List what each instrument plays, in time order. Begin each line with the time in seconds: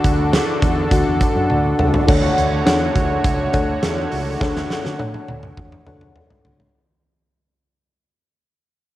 Already playing: analog synth pad D3 D4 F#4 A4, fm electric piano D4 F#4 A4 F#5
0.04 fretless electric bass D2, kick, closed hi-hat
0.33 snare, closed hi-hat
0.62 fretless electric bass E2, kick, closed hi-hat
0.91 fretless electric bass D2, fm electric piano D4 F#4 A4 F#5, kick, closed hi-hat
1.07 fretless electric bass E2
1.21 kick, closed hi-hat
1.35 fretless electric bass F#2
1.50 fretless electric bass D2, high tom
1.79 fretless electric bass C#2, mid tom
1.94 floor tom
2.07 fretless electric bass D2, analog synth pad D3 A3 F#4 C#5, fm electric piano D4 A4 C#5 F#5, kick, crash
2.37 fretless electric bass D2, closed hi-hat
2.66 fretless electric bass E2, fm electric piano D4 A4 C#5 F#5, snare, closed hi-hat, tambourine
2.96 fretless electric bass D2, kick, closed hi-hat
3.24 fretless electric bass C#2, kick, closed hi-hat
3.53 fretless electric bass D2, fm electric piano D4 A4 C#5 F#5, kick, closed hi-hat
3.83 fretless electric bass E2, snare, closed hi-hat, tambourine
4.12 fretless electric bass C#2, open hi-hat
4.40 fretless electric bass D2, fm electric piano D4 A4 C#5 F#5, kick, snare
4.56 snare
4.70 snare
4.85 fretless electric bass D3, snare
4.99 fretless electric bass A2, fm electric piano D4 A4 C#5 F#5, high tom
5.14 high tom
5.28 fretless electric bass D2, high tom
5.43 mid tom
5.57 fretless electric bass E2, kick, mid tom
5.72 mid tom
5.86 fretless electric bass D2, fm electric piano D4 A4 C#5 F#5, mid tom
6.01 mid tom
6.16 mid tom
6.30 floor tom
6.45 fretless electric bass C#2, floor tom
6.60 floor tom